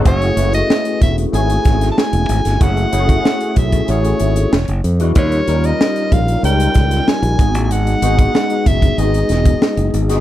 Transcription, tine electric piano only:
\new Staff \with { instrumentName = "Tine electric piano" } { \time 4/4 \key fis \dorian \tempo 4 = 94 <a cis' e' fis' gis'>16 r16 <a cis' e' fis' b'>4 r8 <a cis' e' fis' gis'>4. r8 | <a cis' e' fis' gis'>16 r16 <a cis' e' fis' gis'>4 r8 <a cis' e' fis' gis'>4 r8. <gis d' e' fis' b'>16 | <g cis' dis' eis' ais'>16 r16 <g cis' dis' eis' ais'>4 r8 <g cis' dis' eis' ais'>4. <gis b dis' fis' gis'>8~ | <gis b dis' fis' gis'>16 r16 <gis b dis' fis' gis'>4 r8 <gis b dis' fis' gis'>4~ <gis b dis' fis' gis'>16 r8 <gis b dis' fis' gis'>16 | }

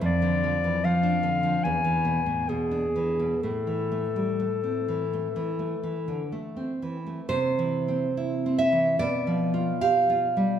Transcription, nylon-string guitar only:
\new Staff \with { instrumentName = "Nylon-string guitar" } { \clef bass \time 4/4 \key a \minor \tempo 4 = 69 << { r1 | r1 | \key c \major c''4. e''8 d''4 f''4 | } \\ { f,16 d16 f16 e16 f16 d'16 d16 f16 e,16 e16 b,16 a,16 b,16 d'16 e16 b,16 | a,16 e16 a16 g16 a16 c'16 e16 a16 e16 a16 e16 d16 a16 c'16 e16 a16 | \tuplet 3/2 { c8 e8 c'8 e'8 c'8 e8 b,8 f8 f'8 g'8 f'8 g8 } | } >> }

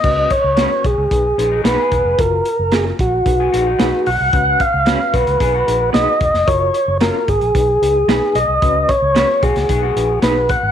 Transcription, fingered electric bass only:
\new Staff \with { instrumentName = "Fingered electric bass" } { \clef bass \time 4/4 \key b \lydian \tempo 4 = 112 cis,8 r16 cis,8 r16 b,,16 cis,16 b,,8 ais,,8 b,,16 r16 e,,16 eis,,16 | fis,,8 r16 fis,,8. ais,,8 b,,8 ais,,8 b,,16 r16 b,,16 bis,,16 | cis,8 r16 cis,8 r16 b,,16 cis,16 b,,8 ais,,8 b,,16 r16 e,,16 eis,,16 | fis,,8 r16 fis,,8 r16 gis,,16 ais,,16 b,,8 cis,8 b,,16 r16 b,,16 bis,,16 |
cis,8 r16 cis,8 r16 b,,16 cis,16 b,,8 ais,,8 b,,8. gis,,16 | }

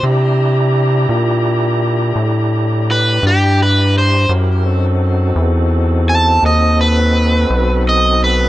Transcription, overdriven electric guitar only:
\new Staff \with { instrumentName = "Overdriven electric guitar" } { \time 12/8 \key c \lydian \tempo 4. = 56 r1 b'8 g'8 b'8 c''8 | r2 r8 a''8 dis''8 b'4. dis''8 b'8 | }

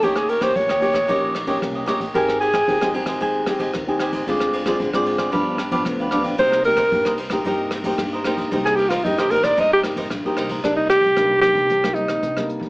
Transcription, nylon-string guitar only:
\new Staff \with { instrumentName = "Nylon-string guitar" } { \time 4/4 \key c \minor \tempo 4 = 113 << { <bes des' g'>8. <bes des' g'>8. <bes des' g'>16 r16 <bes des' g'>8 r16 <bes des' g'>8. <bes des' g'>16 r16 | <c' ees' g'>8. r16 <c' ees' g'>16 <c' ees' g'>16 <c' ees' g'>4 <c' ees' g'>8. <c' ees' g'>8. | <aes c' f'>8. <aes c' f'>8 <aes c' f'>8. <f b d'>8 r16 <f b d'>8. <f b d'>8 | <bes ees' g'>8 <bes ees' g'>16 r16 <bes ees' g'>8 r16 <bes ees' g'>16 <bes ees' g'>8. <bes ees' g'>8. <bes ees' g'>8 |
<bes ees' g'>8. r16 <bes ees' g'>8 <bes ees' g'>8. r16 <bes ees' g'>8 r16 <bes ees' g'>8. | <g bes ees'>8. r16 <g bes ees'>16 r16 <g bes ees'>8 r16 <g bes ees'>16 <g bes ees'>8 r16 <g bes ees'>8. | } \\ { ees4 bes,4 ees4 bes,4 | aes4 ees4 aes4 ees4 | d4 d4 g,4 d4 | c4 g,4 c4 g,4 |
c4 g,4 c4 g,4 | c4 g,4 c4 g,4 | } >> }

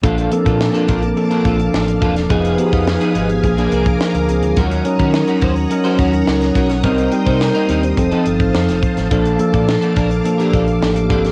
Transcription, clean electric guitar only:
\new Staff \with { instrumentName = "Clean electric guitar" } { \time 4/4 \key bes \major \tempo 4 = 106 <d' f' a'>8 r16 <d' f' a'>16 r16 <d' f' a'>16 <d' f' bes'>16 r8 <d' f' bes'>16 <d' f' a'>16 r8. <d' f' a'>16 r16 | <ces' ees' aes'>8 r16 <ces' ees' bes'>16 r16 <ces' ees' aes'>16 <ces' ees' aes'>16 r8 <bes d' aes'>16 <bes d' aes'>16 r4 r16 | <des' ges' bes'>8 r16 <des' ges' bes'>16 r16 <des' ges' bes'>16 <des' ges' c''>16 r8 <des' ges' c''>16 <des' ges' bes'>16 r8. <des' ges' bes'>16 r16 | <c' ees' bes'>8 r16 <c' ees' c''>16 r16 <c' ees' bes'>16 <c' ees' bes'>16 r8 <c' ees' a'>16 r4. |
<bes d' a'>8 r16 <bes d' a'>16 r16 <bes d' a'>16 <bes d' bes'>16 r8 <bes d' bes'>16 <bes d' a'>16 r8. <bes d' a'>16 r16 | }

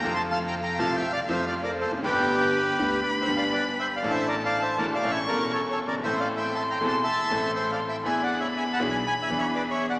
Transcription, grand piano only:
\new Staff \with { instrumentName = "Grand piano" } { \clef bass \time 4/4 \key a \phrygian \tempo 4 = 120 << { <f, c f a f'>4. <c, c f a f'>8 r8 <f, c f a f'>4. | <g,, g, d g b g'>4. <d, d g b g'>8 r8 <g,, g, d g b g'>4. | <a,, a, e a d' a'>4. <e,, e, e a d' a'>8 <a,, a, e a cis' a'>8 <e,, e, e a cis' a'>4. | <a,, a, e a c' a'>4. <e,, e, e a c' a'>8 r8 <a,, a, e a c' a'>4. |
<e, e b d' gis'>4. <b,, b, e b d' gis'>8 r8 <e, e b d' gis'>4. | } \\ { r2. r8 r32 e,32 f,32 fis,32 | r1 | r2. r8 r32 fis,,32 g,,32 gis,,32 | r1 |
r1 | } >> }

